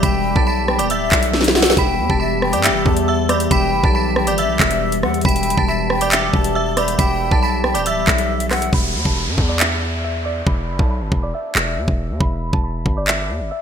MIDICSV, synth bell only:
0, 0, Header, 1, 2, 480
1, 0, Start_track
1, 0, Key_signature, 1, "minor"
1, 0, Tempo, 434783
1, 34, Time_signature, 4, 2, 24, 8
1, 15033, End_track
2, 0, Start_track
2, 0, Title_t, "Synth bell"
2, 0, Program_c, 0, 98
2, 31, Note_on_c, 0, 83, 96
2, 41, Note_on_c, 0, 95, 74
2, 371, Note_off_c, 0, 83, 0
2, 376, Note_off_c, 0, 95, 0
2, 398, Note_on_c, 0, 81, 81
2, 407, Note_on_c, 0, 93, 65
2, 509, Note_off_c, 0, 81, 0
2, 514, Note_off_c, 0, 93, 0
2, 517, Note_on_c, 0, 83, 85
2, 525, Note_on_c, 0, 95, 64
2, 854, Note_off_c, 0, 83, 0
2, 859, Note_off_c, 0, 95, 0
2, 868, Note_on_c, 0, 86, 78
2, 877, Note_on_c, 0, 74, 56
2, 984, Note_off_c, 0, 86, 0
2, 989, Note_off_c, 0, 74, 0
2, 1001, Note_on_c, 0, 88, 89
2, 1010, Note_on_c, 0, 76, 66
2, 1914, Note_off_c, 0, 88, 0
2, 1918, Note_off_c, 0, 76, 0
2, 1970, Note_on_c, 0, 83, 110
2, 1978, Note_on_c, 0, 95, 86
2, 2301, Note_off_c, 0, 83, 0
2, 2306, Note_off_c, 0, 95, 0
2, 2316, Note_on_c, 0, 81, 76
2, 2325, Note_on_c, 0, 93, 58
2, 2426, Note_on_c, 0, 83, 80
2, 2428, Note_off_c, 0, 81, 0
2, 2433, Note_off_c, 0, 93, 0
2, 2435, Note_on_c, 0, 95, 65
2, 2768, Note_off_c, 0, 83, 0
2, 2773, Note_off_c, 0, 95, 0
2, 2791, Note_on_c, 0, 86, 74
2, 2800, Note_on_c, 0, 74, 60
2, 2906, Note_off_c, 0, 86, 0
2, 2910, Note_off_c, 0, 74, 0
2, 2910, Note_on_c, 0, 88, 84
2, 2918, Note_on_c, 0, 76, 67
2, 3363, Note_off_c, 0, 88, 0
2, 3368, Note_off_c, 0, 76, 0
2, 3401, Note_on_c, 0, 88, 88
2, 3410, Note_on_c, 0, 76, 67
2, 3624, Note_off_c, 0, 88, 0
2, 3628, Note_off_c, 0, 76, 0
2, 3634, Note_on_c, 0, 86, 80
2, 3644, Note_on_c, 0, 74, 67
2, 3860, Note_off_c, 0, 86, 0
2, 3865, Note_off_c, 0, 74, 0
2, 3880, Note_on_c, 0, 83, 114
2, 3889, Note_on_c, 0, 95, 79
2, 4216, Note_off_c, 0, 83, 0
2, 4221, Note_off_c, 0, 95, 0
2, 4242, Note_on_c, 0, 81, 74
2, 4251, Note_on_c, 0, 93, 63
2, 4352, Note_off_c, 0, 81, 0
2, 4356, Note_off_c, 0, 93, 0
2, 4359, Note_on_c, 0, 83, 81
2, 4368, Note_on_c, 0, 95, 66
2, 4695, Note_off_c, 0, 83, 0
2, 4700, Note_off_c, 0, 95, 0
2, 4716, Note_on_c, 0, 86, 76
2, 4725, Note_on_c, 0, 74, 62
2, 4828, Note_off_c, 0, 86, 0
2, 4833, Note_off_c, 0, 74, 0
2, 4840, Note_on_c, 0, 88, 87
2, 4849, Note_on_c, 0, 76, 72
2, 5753, Note_off_c, 0, 88, 0
2, 5758, Note_off_c, 0, 76, 0
2, 5796, Note_on_c, 0, 83, 116
2, 5806, Note_on_c, 0, 95, 81
2, 6134, Note_off_c, 0, 83, 0
2, 6139, Note_off_c, 0, 95, 0
2, 6155, Note_on_c, 0, 81, 80
2, 6164, Note_on_c, 0, 93, 66
2, 6268, Note_off_c, 0, 81, 0
2, 6273, Note_off_c, 0, 93, 0
2, 6276, Note_on_c, 0, 83, 80
2, 6285, Note_on_c, 0, 95, 63
2, 6614, Note_off_c, 0, 83, 0
2, 6618, Note_off_c, 0, 95, 0
2, 6639, Note_on_c, 0, 86, 81
2, 6649, Note_on_c, 0, 74, 62
2, 6750, Note_off_c, 0, 86, 0
2, 6755, Note_off_c, 0, 74, 0
2, 6757, Note_on_c, 0, 88, 80
2, 6765, Note_on_c, 0, 76, 73
2, 7207, Note_off_c, 0, 88, 0
2, 7212, Note_off_c, 0, 76, 0
2, 7236, Note_on_c, 0, 88, 91
2, 7244, Note_on_c, 0, 76, 72
2, 7461, Note_off_c, 0, 88, 0
2, 7465, Note_off_c, 0, 76, 0
2, 7477, Note_on_c, 0, 86, 78
2, 7487, Note_on_c, 0, 74, 67
2, 7702, Note_off_c, 0, 86, 0
2, 7707, Note_off_c, 0, 74, 0
2, 7715, Note_on_c, 0, 83, 96
2, 7723, Note_on_c, 0, 95, 72
2, 8054, Note_off_c, 0, 83, 0
2, 8058, Note_off_c, 0, 95, 0
2, 8079, Note_on_c, 0, 81, 83
2, 8088, Note_on_c, 0, 93, 66
2, 8190, Note_off_c, 0, 81, 0
2, 8194, Note_off_c, 0, 93, 0
2, 8198, Note_on_c, 0, 83, 84
2, 8208, Note_on_c, 0, 95, 64
2, 8535, Note_off_c, 0, 83, 0
2, 8540, Note_off_c, 0, 95, 0
2, 8550, Note_on_c, 0, 86, 78
2, 8559, Note_on_c, 0, 74, 57
2, 8665, Note_off_c, 0, 86, 0
2, 8670, Note_off_c, 0, 74, 0
2, 8683, Note_on_c, 0, 88, 89
2, 8692, Note_on_c, 0, 76, 63
2, 9595, Note_off_c, 0, 88, 0
2, 9599, Note_off_c, 0, 76, 0
2, 9651, Note_on_c, 0, 83, 109
2, 9660, Note_on_c, 0, 95, 85
2, 9982, Note_off_c, 0, 83, 0
2, 9987, Note_off_c, 0, 95, 0
2, 9998, Note_on_c, 0, 81, 77
2, 10007, Note_on_c, 0, 93, 57
2, 10108, Note_on_c, 0, 83, 81
2, 10109, Note_off_c, 0, 81, 0
2, 10114, Note_off_c, 0, 93, 0
2, 10117, Note_on_c, 0, 95, 63
2, 10450, Note_off_c, 0, 83, 0
2, 10454, Note_off_c, 0, 95, 0
2, 10470, Note_on_c, 0, 86, 73
2, 10480, Note_on_c, 0, 74, 58
2, 10585, Note_off_c, 0, 86, 0
2, 10590, Note_off_c, 0, 74, 0
2, 10591, Note_on_c, 0, 88, 80
2, 10599, Note_on_c, 0, 76, 67
2, 11044, Note_off_c, 0, 88, 0
2, 11048, Note_off_c, 0, 76, 0
2, 11082, Note_on_c, 0, 88, 89
2, 11091, Note_on_c, 0, 76, 65
2, 11304, Note_off_c, 0, 88, 0
2, 11309, Note_off_c, 0, 76, 0
2, 11314, Note_on_c, 0, 86, 79
2, 11323, Note_on_c, 0, 74, 66
2, 11540, Note_off_c, 0, 86, 0
2, 11545, Note_off_c, 0, 74, 0
2, 11561, Note_on_c, 0, 83, 109
2, 11570, Note_on_c, 0, 95, 75
2, 11896, Note_off_c, 0, 83, 0
2, 11901, Note_off_c, 0, 95, 0
2, 11921, Note_on_c, 0, 81, 70
2, 11930, Note_on_c, 0, 93, 62
2, 12031, Note_off_c, 0, 81, 0
2, 12035, Note_off_c, 0, 93, 0
2, 12037, Note_on_c, 0, 83, 78
2, 12046, Note_on_c, 0, 95, 63
2, 12375, Note_off_c, 0, 83, 0
2, 12379, Note_off_c, 0, 95, 0
2, 12394, Note_on_c, 0, 86, 74
2, 12403, Note_on_c, 0, 74, 62
2, 12507, Note_off_c, 0, 86, 0
2, 12512, Note_off_c, 0, 74, 0
2, 12519, Note_on_c, 0, 88, 84
2, 12527, Note_on_c, 0, 76, 69
2, 13432, Note_off_c, 0, 88, 0
2, 13437, Note_off_c, 0, 76, 0
2, 13473, Note_on_c, 0, 83, 114
2, 13481, Note_on_c, 0, 95, 81
2, 13812, Note_off_c, 0, 83, 0
2, 13816, Note_off_c, 0, 95, 0
2, 13835, Note_on_c, 0, 81, 78
2, 13844, Note_on_c, 0, 93, 65
2, 13948, Note_off_c, 0, 81, 0
2, 13952, Note_off_c, 0, 93, 0
2, 13955, Note_on_c, 0, 83, 80
2, 13963, Note_on_c, 0, 95, 63
2, 14293, Note_off_c, 0, 83, 0
2, 14298, Note_off_c, 0, 95, 0
2, 14318, Note_on_c, 0, 86, 79
2, 14326, Note_on_c, 0, 74, 63
2, 14429, Note_off_c, 0, 86, 0
2, 14433, Note_on_c, 0, 88, 78
2, 14434, Note_off_c, 0, 74, 0
2, 14442, Note_on_c, 0, 76, 70
2, 14885, Note_off_c, 0, 88, 0
2, 14890, Note_off_c, 0, 76, 0
2, 14915, Note_on_c, 0, 88, 87
2, 14923, Note_on_c, 0, 76, 72
2, 15033, Note_off_c, 0, 76, 0
2, 15033, Note_off_c, 0, 88, 0
2, 15033, End_track
0, 0, End_of_file